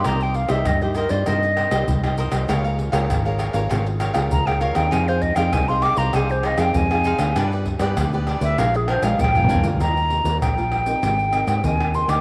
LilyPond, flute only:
\new Staff \with { instrumentName = "Flute" } { \time 4/4 \key c \minor \tempo 4 = 98 bes''16 g''16 f''16 e''16 ees''16 g'16 bes'16 d''16 ees''4 r4 | r2. bes''16 g''16 f''16 g''16 | aes''16 c''16 ees''16 g''16 aes''16 c'''16 d'''16 bes''16 aes''16 c''16 ees''16 g''16 aes''4 | r4. r16 e''16 f''16 aes'16 c''16 f''16 g''8. r16 |
\key ees \major bes''4 g''2 aes''8 c'''16 d'''16 | }